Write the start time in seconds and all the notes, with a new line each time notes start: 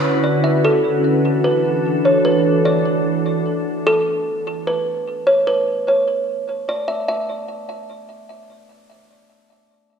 Already playing: D3 C#4 E4 F#4 B4
0.24 D5
0.44 E5
0.64 E3 D4 A4
1.44 B4
2.05 C#5
2.25 B4
2.65 D5
3.87 A4
4.67 B4
5.27 C#5
5.47 B4
5.88 C#5
6.69 D5
6.88 E5
7.08 E5